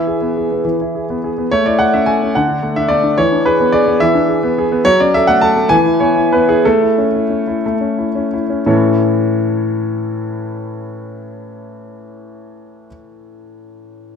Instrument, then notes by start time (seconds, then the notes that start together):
grand piano
Already playing: E3 E4 E5
0.07 G#4
0.22 B3
0.37 G#4
0.52 B3
0.65 E3
0.81 E4
0.95 G#4
1.10 B3
1.24 G#4
1.38 B3
1.51 A3 C#5
1.66 E4 D5
1.79 A4 F#5
1.94 C#4 E5
2.06 A4 G#5
2.23 C#4
2.35 D3 F#5
2.48 D4
2.63 A3
2.76 D4 E5
2.89 A3 D5
3.03 D4
3.18 E3 C#5
3.32 D4
3.46 G#4 B4
3.60 B3
3.72 G#4 D5
3.88 B3
4.00 E3 E5
4.15 D4
4.29 G#4
4.43 B3
4.58 G#4
4.72 B3
4.85 F#3 C#5
5.00 C#4 D5
5.14 A4 E5
5.27 A3 F#5
5.41 A4 A5
5.56 A3
5.69 E3 G#5
5.86 E4
6.00 B3 C#5
6.16 E4
6.32 B3 B4
6.49 E4 G#4
6.65 A3 A4
6.82 E4
6.98 C#4
7.14 E4
7.30 C#4
7.47 E4
7.66 A3
7.81 C#4
7.98 E4
8.15 C#4
8.34 E4
8.50 C#4
8.66 A2 E3 C#4 E4 A4 C#5